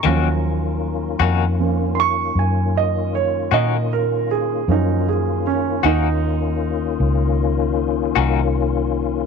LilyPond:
<<
  \new Staff \with { instrumentName = "Grand piano" } { \time 12/8 \key ees \dorian \tempo 4. = 52 <bes'' des'''>4. r4 <c''' des'''>8 aes''8 ees''8 des''8 ees''8 bes'8 aes'8 | ees'8 aes'8 des'8 ees'2. r4. | }
  \new Staff \with { instrumentName = "Grand piano" } { \clef bass \time 12/8 \key ees \dorian <f ges des'>4. r8 <f bes des'>8 r2. r8 | <f ges des'>4. r1 r8 | }
  \new Staff \with { instrumentName = "Clean electric guitar" } { \time 12/8 \key ees \dorian <ees bes des' ges'>8 r4 <ees bes des' ges'>8 r2 r8 <ees bes des' ges'>8 r4 | r4. <ees bes des' ges'>8 r2 r8 <ees bes des' ges'>8 r4 | }
  \new Staff \with { instrumentName = "Tonewheel organ" } { \time 12/8 \key ees \dorian <ees bes des' f'>1. | <ees bes des' f'>1. | }
  \new Staff \with { instrumentName = "Fingered electric bass" } { \clef bass \time 12/8 \key ees \dorian ees,4. f,4. ges,4. bes,4. | ges,4. ees,4. des,4. c,4. | }
>>